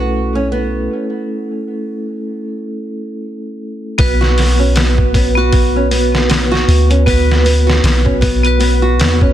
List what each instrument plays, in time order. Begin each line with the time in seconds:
Already playing: 808-style bass B1, vibraphone A3 C#4 E4 A4, nylon-string guitar F#4
0.35 nylon-string guitar C#4
0.52 nylon-string guitar B3
3.98 808-style bass B1, vibraphone B3 F#4 B4, nylon-string guitar B3, kick, open hi-hat
4.21 nylon-string guitar F#4, snare
4.38 snare, open hi-hat
4.59 nylon-string guitar C#4
4.76 nylon-string guitar B3, snare, open hi-hat
4.98 kick
5.14 nylon-string guitar B3, kick, open hi-hat
5.35 vibraphone B3 F#4 B4, nylon-string guitar F#4
5.53 kick, open hi-hat
5.76 nylon-string guitar C#4
5.91 nylon-string guitar B3, open hi-hat
6.15 snare
6.29 nylon-string guitar B3, snare, open hi-hat
6.51 nylon-string guitar F#4, snare
6.68 808-style bass D2, open hi-hat
6.90 nylon-string guitar C#4, closed hi-hat
7.06 nylon-string guitar B3, vibraphone B3 F#4 B4, kick, open hi-hat
7.31 snare
7.45 nylon-string guitar B3, open hi-hat
7.67 nylon-string guitar F#4, snare
7.83 808-style bass B1, snare, open hi-hat
8.05 nylon-string guitar C#4, kick
8.21 nylon-string guitar B3, kick, open hi-hat
8.44 vibraphone B3 F#4 B4, closed hi-hat
8.60 nylon-string guitar B3, open hi-hat
8.82 nylon-string guitar F#4
8.99 808-style bass E2, snare, open hi-hat
9.21 nylon-string guitar C#4, kick